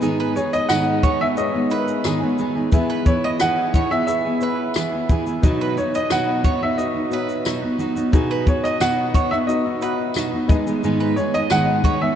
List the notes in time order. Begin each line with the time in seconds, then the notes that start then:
Already playing: B3 D#4 G#4 D#5
0.01 G#2 D#3 G#3 B3 D#4 G#4, shaker
0.20 B4
0.36 G#3 B3 D#4 G#4 C#5, shaker
0.53 D#5, shaker
0.69 G#2 D#3 G#3 B3 D#4 G#4 F#5, cross-stick, tambourine, shaker
1.03 G#3 B3 D#4 G#4 C#5, kick, shaker
1.21 G#3 B3 D#4 G#4 E5
1.36 B3 D#4 G#4 C#5 D#5, shaker
1.53 G#3 B3 D#4 G#4
1.70 B3 D#4 G#4 A#4 B4, shaker
1.79 B4
1.88 shaker
2.04 G#2 D#3 G#3 B3 D#4 G#4, cross-stick, tambourine, shaker
2.22 G#3 B3 D#4 G#4
2.38 G#3 B3 D#4 G#4, shaker
2.55 G#3 B3 D#4 G#4
2.72 E3 B3 E4 G#4 E5, kick, shaker
2.90 B4
3.06 E3 B3 E4 G#4 C#5, kick, shaker
3.24 D#5
3.40 E3 B3 E4 G#4 F#5, cross-stick, tambourine, shaker
3.74 E3 B3 E4 G#4 C#5, kick, shaker
3.91 B3 E4 G#4 E5, cross-stick
4.07 B3 E4 G#4 E5, shaker
4.25 B3 E4 G#4
4.40 B3 E4 G#4 B4, shaker
4.74 E3 B3 E4 G#4, cross-stick, tambourine, shaker
4.92 B3 E4 G#4
5.09 E3 B3 E4 G#4, kick, shaker
5.27 B3 E4 G#4, shaker
5.41 B2 F#3 B3 D#4 F#4 D#5, kick, shaker
5.61 B4
5.77 F#3 B3 D#4 F#4 C#5, shaker
5.95 D#5, shaker
6.10 B2 F#3 B3 D#4 F#4 F#5, cross-stick, tambourine, shaker
6.44 F#3 B3 D#4 F#4 C#5, kick, shaker
6.61 B3 D#4 F#4 E5
6.77 B3 D#4 F#4 D#5, shaker
6.94 B3 D#4 F#4
7.10 B3 D#4 F#4 B4 C#5, shaker
7.29 shaker
7.45 B2 F#3 B3 D#4 F#4, cross-stick, tambourine, shaker
7.62 B3 D#4 F#4
7.78 F#3 B3 D#4 F#4, shaker
7.95 B3 D#4 F#4, shaker
8.12 B2 F#3 B3 D#4 F#4 G#4, kick, shaker
8.31 B4
8.46 F#3 B3 D#4 F#4 C#5, kick, shaker
8.64 D#5, shaker
8.80 B2 F#3 B3 D#4 F#4 F#5, cross-stick, tambourine, shaker
9.14 F#3 B3 D#4 F#4 C#5, kick, shaker
9.31 B3 D#4 F#4 E5, cross-stick
9.47 B3 D#4 F#4 D#5, shaker
9.65 B3 D#4 F#4
9.81 B3 D#4 F#4 B4 F#5, shaker
10.14 B2 F#3 B3 D#4 F#4, cross-stick, tambourine, shaker
10.32 B3 D#4 F#4
10.47 G#3 B3 D#4 G#4 D#5, kick, shaker
10.51 G#4
10.67 G#3 B3 D#4 G#4, shaker
10.83 G#2 D#3 G#3 B3 D#4 G#4, shaker
11.00 B4
11.16 G#3 B3 D#4 G#4 C#5, shaker
11.34 D#5, shaker
11.50 G#2 D#3 G#3 B3 D#4 G#4 F#5, cross-stick, tambourine, shaker
11.84 G#3 B3 D#4 G#4 C#5, kick, shaker
12.01 G#3 B3 D#4 G#4 E5